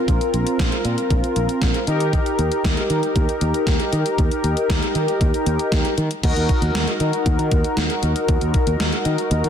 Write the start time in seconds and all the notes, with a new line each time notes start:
Already playing: C4 F4 A#4
0.08 A#1, kick, closed hi-hat
0.21 closed hi-hat
0.34 A#1, closed hi-hat
0.47 closed hi-hat
0.59 A#1, kick, snare, closed hi-hat
0.72 closed hi-hat
0.85 A#2, closed hi-hat
0.98 closed hi-hat
1.10 A#1, kick, closed hi-hat
1.24 closed hi-hat
1.36 A#1, closed hi-hat
1.49 closed hi-hat
1.62 A#1, kick, snare, closed hi-hat
1.74 closed hi-hat
1.87 D#3 D#4 G4 A#4, closed hi-hat
2.00 closed hi-hat
2.13 kick, closed hi-hat
2.26 closed hi-hat
2.39 D#2, closed hi-hat
2.52 closed hi-hat
2.65 D#2, kick, snare, closed hi-hat
2.77 closed hi-hat
2.90 D#3, closed hi-hat
3.03 closed hi-hat
3.16 D#2, kick, closed hi-hat
3.29 closed hi-hat
3.41 D#2, closed hi-hat
3.54 closed hi-hat
3.67 D#2, kick, snare, closed hi-hat
3.80 closed hi-hat
3.93 D#3, closed hi-hat
4.06 closed hi-hat
4.18 D#2, kick, closed hi-hat
4.31 closed hi-hat
4.44 D#2, closed hi-hat
4.57 closed hi-hat
4.70 D#2, kick, snare, closed hi-hat
4.82 closed hi-hat
4.95 D#3, closed hi-hat
5.08 closed hi-hat
5.21 D#2, kick, closed hi-hat
5.34 closed hi-hat
5.46 D#2, closed hi-hat
5.59 closed hi-hat
5.72 D#2, kick, snare, closed hi-hat
5.85 closed hi-hat
5.98 D#3, closed hi-hat
6.11 closed hi-hat
6.23 D#2 D#4 F#4 A#4, kick, closed hi-hat, crash
6.36 D#2, closed hi-hat
6.49 kick, closed hi-hat
6.62 D#2, closed hi-hat
6.75 D#2, snare, closed hi-hat
6.87 closed hi-hat
7.00 D#3, closed hi-hat
7.13 closed hi-hat
7.26 D#2, kick, closed hi-hat
7.39 D#3, closed hi-hat
7.51 D#2, kick, closed hi-hat
7.64 closed hi-hat
7.77 D#2, snare, closed hi-hat
7.90 closed hi-hat
8.03 D#2, closed hi-hat
8.16 closed hi-hat
8.28 D#2, kick, closed hi-hat
8.41 D#2, closed hi-hat
8.54 kick, closed hi-hat
8.67 D#2, closed hi-hat
8.80 D#2, snare, closed hi-hat
8.92 closed hi-hat
9.05 D#3, closed hi-hat
9.18 closed hi-hat
9.31 D#2, closed hi-hat
9.44 D#3, closed hi-hat